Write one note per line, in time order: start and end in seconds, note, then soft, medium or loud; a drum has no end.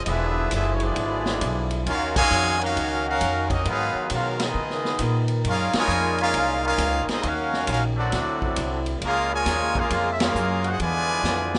0.00 1.82 F3 medium
0.00 1.82 G#3 medium
0.00 0.08 D#5 medium
0.05 0.50 E1 medium
0.05 1.85 D3 medium
0.05 0.50 G#3 medium
0.05 0.51 B3 medium
0.05 0.51 E4 medium
0.05 1.85 E4 medium
0.05 0.52 B4 medium
0.05 kick soft
0.05 ride medium
0.09 0.53 D4 medium
0.09 0.52 G#4 medium
0.09 0.52 E5 loud
0.51 0.95 F#1 medium
0.51 0.71 G#3 medium
0.51 0.71 B3 medium
0.51 0.72 D4 medium
0.51 0.71 E4 medium
0.51 0.71 G#4 medium
0.51 0.71 B4 medium
0.51 0.72 E5 medium
0.51 kick soft
0.51 hi-hat pedal medium
0.51 ride medium
0.73 0.82 C#5 medium
0.80 1.71 G#3 medium
0.80 1.71 B3 medium
0.80 1.71 D4 medium
0.80 ride medium
0.84 1.73 B3 medium
0.84 1.72 E4 medium
0.84 1.72 G#4 medium
0.84 1.72 D5 medium
0.96 1.40 G#1 medium
0.96 kick soft
0.96 ride medium
1.26 snare medium
1.41 1.85 B1 loud
1.41 kick soft
1.41 hi-hat pedal medium
1.41 ride medium
1.71 ride medium
1.85 2.30 D#2 medium
1.85 5.40 D#3 medium
1.85 2.13 A#3 medium
1.85 2.13 C#4 medium
1.85 3.63 C#4 medium
1.85 2.15 C#4 medium
1.85 3.63 D#4 loud
1.85 2.13 F4 medium
1.85 3.64 F#4 medium
1.85 2.14 F#4 loud
1.85 2.14 A#4 medium
1.85 2.15 F5 loud
1.85 kick soft
1.85 ride medium
2.15 2.58 A#2 loud
2.15 2.57 C#3 loud
2.15 2.57 G#3 loud
2.15 2.59 F#4 loud
2.15 2.58 C#5 loud
2.15 2.58 F5 loud
2.15 2.58 G#5 loud
2.15 kick loud
2.15 crash medium
2.31 2.74 F2 medium
2.31 hi-hat pedal medium
2.60 3.05 A#3 medium
2.60 3.04 C#4 loud
2.60 3.06 C#4 medium
2.60 3.05 F#4 medium
2.60 3.06 F#4 medium
2.60 3.06 A#4 medium
2.60 3.06 F5 loud
2.60 ride medium
2.77 3.20 C#2 medium
2.77 kick soft
2.77 ride medium
3.05 3.47 A#3 medium
3.05 3.47 C#4 medium
3.05 3.48 C#4 loud
3.05 3.47 F#4 medium
3.05 3.48 F#4 medium
3.05 3.48 A#4 medium
3.05 3.48 F5 loud
3.21 3.64 F2 loud
3.21 kick soft
3.21 hi-hat pedal medium
3.21 ride medium
3.49 3.65 F#3 medium
3.49 3.65 A#3 medium
3.49 3.66 C#4 medium
3.49 3.65 D#4 medium
3.49 3.66 F#4 medium
3.49 3.66 A#4 medium
3.49 3.66 D#5 medium
3.49 kick medium
3.49 ride medium
3.64 3.93 G#2 medium
3.64 4.53 F#3 medium
3.64 4.07 F#3 medium
3.64 4.53 G#3 medium
3.64 4.54 B3 medium
3.64 4.07 B3 medium
3.64 4.07 F4 medium
3.64 kick soft
3.64 ride medium
3.68 4.09 D#4 loud
3.68 4.08 G#4 loud
3.68 4.09 B4 medium
3.68 4.09 F5 loud
3.95 muted upright bass stroke soft
4.10 4.54 B2 medium
4.10 4.38 F4 medium
4.10 4.39 F#4 medium
4.10 4.39 F5 loud
4.10 kick soft
4.10 hi-hat pedal medium
4.10 ride medium
4.14 4.39 C#4 medium
4.14 4.39 A#4 medium
4.40 5.29 G#3 medium
4.40 5.29 B3 medium
4.40 5.31 B3 medium
4.40 5.29 D#4 medium
4.40 snare medium
4.40 ride medium
4.44 5.31 F4 medium
4.44 5.31 G#4 medium
4.44 5.31 D#5 medium
4.53 4.98 C#3 medium
4.53 8.07 D#4 loud
4.53 7.19 A#4 medium
4.53 5.42 B4 medium
4.53 kick soft
4.70 snare soft
4.85 snare medium
4.99 5.43 A#2 loud
4.99 kick soft
4.99 hi-hat pedal medium
4.99 ride medium
5.28 ride soft
5.43 5.72 F#2 medium
5.43 7.20 A#2 medium
5.43 7.21 G#3 medium
5.43 5.73 A#3 medium
5.43 kick soft
5.43 ride medium
5.47 5.73 C#4 medium
5.47 5.74 C#4 loud
5.47 5.73 F4 medium
5.47 5.74 G#4 loud
5.47 5.74 A#4 medium
5.47 5.74 F5 loud
5.73 6.16 C#3 loud
5.73 6.17 F3 loud
5.73 6.17 G#5 loud
5.73 muted upright bass stroke soft
5.73 snare medium
5.73 ride medium
5.77 6.17 G#3 loud
5.77 6.18 F4 loud
5.77 6.17 A#4 loud
5.77 6.17 C#5 loud
5.88 6.32 F2 medium
5.88 hi-hat pedal medium
6.18 6.61 A#3 medium
6.18 6.60 C#4 medium
6.18 6.61 C#4 loud
6.18 6.60 F4 medium
6.18 6.61 G#4 medium
6.18 6.61 A#4 medium
6.18 6.61 F5 loud
6.18 ride medium
6.34 6.77 C2 medium
6.34 kick soft
6.34 ride medium
6.64 7.05 A#3 medium
6.64 7.05 C#4 medium
6.64 7.06 C#4 loud
6.64 7.05 F4 medium
6.64 7.06 G#4 medium
6.64 7.06 A#4 loud
6.64 7.06 F5 loud
6.78 7.05 C#2 loud
6.78 kick soft
6.78 hi-hat pedal medium
6.78 ride medium
7.07 7.24 D#4 medium
7.07 muted upright bass stroke soft
7.07 snare medium
7.07 ride medium
7.11 7.25 C4 medium
7.11 7.25 F4 medium
7.11 7.25 G#4 medium
7.11 7.25 D#5 loud
7.23 7.67 D#2 medium
7.23 8.11 D#3 medium
7.23 9.00 F#3 medium
7.23 7.66 A#3 medium
7.23 8.11 C#4 medium
7.23 7.66 C#4 medium
7.23 7.68 F#4 medium
7.23 7.69 F5 loud
7.23 kick soft
7.23 ride medium
7.27 7.69 C#4 medium
7.27 7.70 F#4 medium
7.27 7.70 A#4 medium
7.53 snare soft
7.66 8.11 A#1 medium
7.66 7.80 A#3 medium
7.66 7.80 C#4 medium
7.66 7.80 F4 medium
7.66 kick soft
7.66 hi-hat pedal medium
7.66 ride medium
7.70 7.83 C#4 medium
7.70 7.84 F#4 medium
7.70 7.83 A#4 medium
7.70 7.83 F5 medium
7.97 8.82 F#3 medium
7.97 8.82 A3 medium
7.97 8.83 C4 medium
7.97 8.82 D4 medium
7.97 8.83 F#4 medium
7.97 8.83 A4 medium
7.97 8.83 D5 medium
8.12 8.55 D2 medium
8.12 9.01 D3 medium
8.12 9.01 C4 medium
8.12 9.01 E4 medium
8.12 kick soft
8.12 snare soft
8.12 ride medium
8.42 kick medium
8.56 9.00 C2 loud
8.56 kick soft
8.56 hi-hat pedal medium
8.56 ride medium
8.86 ride medium
8.99 9.45 C#2 medium
8.99 10.77 C#3 medium
8.99 11.59 G#3 medium
8.99 10.77 A#3 medium
8.99 10.78 F4 medium
8.99 kick soft
8.99 ride medium
9.04 9.30 G#3 loud
9.04 9.30 A#3 loud
9.04 9.30 C#4 medium
9.04 9.30 F4 loud
9.04 9.30 G#4 medium
9.04 9.30 A#4 loud
9.04 9.30 F5 loud
9.33 9.77 A#2 loud
9.33 9.77 F3 loud
9.33 9.76 G#3 loud
9.33 9.77 F4 loud
9.33 9.77 A#4 loud
9.33 9.77 C#5 loud
9.33 9.77 G#5 loud
9.46 9.89 D#2 medium
9.46 kick soft
9.46 snare soft
9.46 hi-hat pedal medium
9.46 ride medium
9.75 10.12 G#3 medium
9.75 10.11 A#3 loud
9.75 10.12 C#4 medium
9.75 10.12 F4 medium
9.75 10.12 G#4 medium
9.75 10.12 A#4 medium
9.75 10.12 F5 loud
9.75 kick medium
9.90 10.34 F2 medium
9.90 kick soft
9.90 ride medium
10.12 10.20 E5 medium
10.20 10.65 G#3 medium
10.20 10.65 A#3 medium
10.20 10.66 C#4 medium
10.20 10.65 F4 medium
10.20 10.66 G#4 medium
10.20 10.66 A#4 medium
10.20 10.66 F5 loud
10.20 snare loud
10.20 ride medium
10.35 10.78 F#2 loud
10.35 hi-hat pedal medium
10.64 10.82 D#4 medium
10.64 10.80 F#4 medium
10.64 ride medium
10.69 10.82 G#4 medium
10.69 10.82 C5 medium
10.69 10.82 F#5 loud
10.78 11.23 E2 medium
10.78 11.59 B2 medium
10.78 11.59 D3 medium
10.78 11.59 E3 medium
10.78 11.59 F3 medium
10.78 11.59 G#3 medium
10.78 11.59 F4 medium
10.78 11.59 B4 loud
10.78 11.59 G#5 loud
10.78 kick soft
10.78 ride medium
10.82 11.59 D5 loud
11.23 11.59 F2 medium
11.23 snare medium
11.23 hi-hat pedal medium
11.54 snare medium